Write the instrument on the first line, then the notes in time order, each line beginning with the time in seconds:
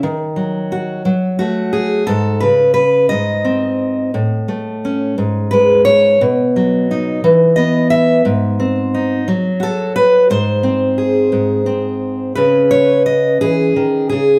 steel-string acoustic guitar
0.03 D#3
0.36 F#3
0.72 F#4
1.05 F#3
1.39 A3 F#4
1.73 G#4
2.07 G#2 A4
2.40 C#3 B4
2.74 B4
3.09 G#2 D#5
3.45 C4
4.14 A2
4.48 A3
4.85 C#4
5.18 G#2
5.51 G#3 B4
5.85 C#5
6.21 B2
6.56 F#3
6.91 D#4
7.24 E3
7.56 B3 D#5
7.90 E5
8.25 G#2
8.60 C4
8.94 D#4
9.28 F#3
9.60 F#4 A4
9.96 B4
10.30 G#2 C5
10.63 C4
10.98 G#4
11.32 G#2
11.66 C4
12.35 C#3 C#4 B4
12.71 C#5
13.06 D#5
13.41 E3 G#4
13.76 D#3
14.09 C#3 G#4